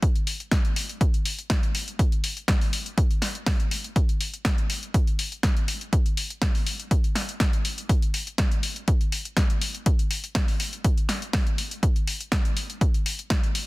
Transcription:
0.03 kick, closed hi-hat
0.16 closed hi-hat
0.27 open hi-hat
0.40 closed hi-hat
0.51 kick, snare, closed hi-hat
0.65 closed hi-hat
0.76 open hi-hat
0.89 closed hi-hat
1.01 kick, closed hi-hat
1.14 closed hi-hat
1.25 open hi-hat
1.39 closed hi-hat
1.50 kick, snare, closed hi-hat
1.63 closed hi-hat
1.75 open hi-hat
1.88 closed hi-hat
1.99 kick, closed hi-hat
2.12 closed hi-hat
2.24 open hi-hat
2.37 closed hi-hat
2.48 kick, snare, closed hi-hat
2.61 open hi-hat
2.73 open hi-hat
2.86 closed hi-hat
2.98 kick, closed hi-hat
3.11 closed hi-hat
3.22 snare, open hi-hat
3.35 closed hi-hat
3.46 kick, snare, open hi-hat
3.60 closed hi-hat
3.71 open hi-hat
3.84 closed hi-hat
3.96 kick, closed hi-hat
4.09 closed hi-hat
4.21 open hi-hat
4.34 closed hi-hat
4.45 kick, snare, closed hi-hat
4.58 closed hi-hat
4.70 open hi-hat
4.83 closed hi-hat
4.94 kick, closed hi-hat
5.07 closed hi-hat
5.19 open hi-hat
5.32 closed hi-hat
5.43 kick, snare, closed hi-hat
5.57 closed hi-hat
5.68 open hi-hat
5.81 closed hi-hat
5.93 kick, closed hi-hat
6.06 closed hi-hat
6.17 open hi-hat
6.30 closed hi-hat
6.42 kick, snare, closed hi-hat
6.55 open hi-hat
6.67 open hi-hat
6.80 closed hi-hat
6.91 kick, closed hi-hat
7.04 closed hi-hat
7.15 snare, open hi-hat
7.29 closed hi-hat
7.40 kick, snare, closed hi-hat
7.53 closed hi-hat
7.65 open hi-hat
7.78 closed hi-hat
7.89 kick, closed hi-hat
8.02 closed hi-hat
8.14 open hi-hat
8.27 closed hi-hat
8.38 kick, snare, closed hi-hat
8.52 closed hi-hat
8.63 open hi-hat
8.76 closed hi-hat
8.88 kick, closed hi-hat
9.01 closed hi-hat
9.12 open hi-hat
9.25 closed hi-hat
9.37 kick, snare, closed hi-hat
9.50 closed hi-hat
9.62 open hi-hat
9.75 closed hi-hat
9.86 kick, closed hi-hat
9.99 closed hi-hat
10.11 open hi-hat
10.24 closed hi-hat
10.35 kick, snare, closed hi-hat
10.48 open hi-hat
10.60 open hi-hat
10.73 closed hi-hat
10.84 kick, closed hi-hat
10.98 closed hi-hat
11.09 snare, open hi-hat
11.22 closed hi-hat
11.33 kick, snare, open hi-hat
11.47 closed hi-hat
11.58 open hi-hat
11.71 closed hi-hat
11.83 kick, closed hi-hat
11.96 closed hi-hat
12.07 open hi-hat
12.21 closed hi-hat
12.32 kick, snare, closed hi-hat
12.45 closed hi-hat
12.57 open hi-hat
12.70 closed hi-hat
12.81 kick, closed hi-hat
12.94 closed hi-hat
13.06 open hi-hat
13.19 closed hi-hat
13.30 kick, snare, closed hi-hat
13.44 closed hi-hat
13.55 open hi-hat

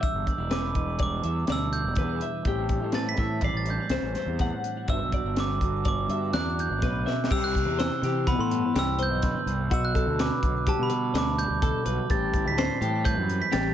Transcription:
Already playing: G3
0.01 E2 D4 E5 E6, kick, closed hi-hat
0.14 G1
0.26 D4 D5, kick, closed hi-hat
0.38 E1 E4
0.51 B3 B4 D6, snare, closed hi-hat
0.63 D4
0.74 E3 E4, kick, closed hi-hat
0.98 G3 D5, kick, closed hi-hat
1.03 D6
1.23 E2 E4 E5, closed hi-hat
1.47 D2 B2 G3 D5, snare, closed hi-hat
1.52 E6
1.72 D4 G6, closed hi-hat
1.84 E1
1.95 E2 D4 B4, kick, closed hi-hat
2.21 E4 E5, closed hi-hat
2.45 A1 A2 E3 G3 C4 G4, kick, closed hi-hat
2.49 E4
2.69 D4, kick, closed hi-hat
2.81 A2 E4
2.92 C4 B4 A6, snare, closed hi-hat
3.09 B6
3.17 A2 E3 E4 E5, kick, snare, closed hi-hat
3.41 A1 G3 D5 C7, kick, snare, closed hi-hat
3.53 A1 A6
3.66 D4, closed hi-hat
3.70 G6
3.80 E4
3.90 C2 E2 G3 C5, snare, closed hi-hat
4.02 A1
4.15 C4 C5, snare, closed hi-hat
4.26 E2
4.39 A2 C4 F#5, kick, snare, closed hi-hat
4.64 D4, closed hi-hat
4.77 E4
4.88 G1 G2 D3 B3 D4 F#4 E5 E6, kick, closed hi-hat
5.00 B1
5.12 F#4 D5, kick, closed hi-hat
5.24 G1
5.36 B3 B4 D6, snare, closed hi-hat
5.51 D4
5.61 D3 F#4, kick, closed hi-hat
5.85 B3 D5 D6, kick, closed hi-hat
6.08 G2 E5, closed hi-hat
6.13 F#4
6.33 D2 E2 B3 D5 F#6, snare, closed hi-hat
6.59 D4 G6, closed hi-hat
6.69 G1
6.82 B1 A2 B4, kick, snare, closed hi-hat
7.06 B2 E5, snare
7.24 snare
7.31 C2 C3 G4 E6, kick, crash
7.44 F#6
7.55 G4, kick, snare, closed hi-hat
7.65 E2
7.79 E4 C5 E6, snare, closed hi-hat
8.02 C3 E3 G4, snare, closed hi-hat
8.27 B3 B5, kick, snare, closed hi-hat
8.38 A2 C6
8.51 G2 E4, closed hi-hat
8.75 C2 G4 E6, snare, closed hi-hat
8.99 B3 C5 G6, closed hi-hat
9.10 B1
9.22 D3 B4, kick, snare, closed hi-hat
9.46 C2 C3, closed hi-hat
9.71 B1 B2 F#4 E6, kick, closed hi-hat
9.85 F#6
9.95 F#4 A4, kick, closed hi-hat
10.07 D2
10.19 B3 B4 D6, snare, closed hi-hat
10.42 B1 D3, kick, closed hi-hat
10.66 G3 G4 A5, kick, closed hi-hat
10.79 B2
10.83 B5
10.90 B2 B3 B4, closed hi-hat
11.14 D2 D5, snare, closed hi-hat
11.18 D6
11.38 G3 G6, closed hi-hat
11.49 D2
11.61 B2 A4, kick, closed hi-hat
11.86 B1 F#4 B4, closed hi-hat
12.10 A1 A2 G4 A6, kick, closed hi-hat
12.34 E4, kick, closed hi-hat
12.45 D2 B6
12.58 C4 C5 C7, snare, closed hi-hat
12.81 A2 E3 G4, closed hi-hat
13.05 G3 B4 G6, kick, closed hi-hat
13.17 F#2
13.29 E2 C4, closed hi-hat
13.42 B6
13.52 A1 G4 A6, snare, closed hi-hat

